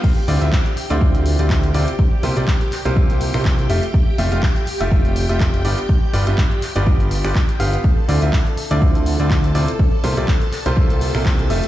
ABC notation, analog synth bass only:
X:1
M:4/4
L:1/16
Q:"Swing 16ths" 1/4=123
K:Cmix
V:1 name="Analog synth bass" clef=bass
z2 D,, D,, z3 D,,4 D,,3 D,, z | z2 C,, C,, z3 C,,4 C,,3 F,,, z | z2 F,,, F,,, z3 F,,,4 F,,,3 G,,, z | z2 G,,, G,,, z3 G,,,4 G,,, z2 G,,, z |
z2 D,, D,, z3 D,,4 D,,3 D,, z | z2 C,, C,, z3 C,,4 C,,3 F,,, z |]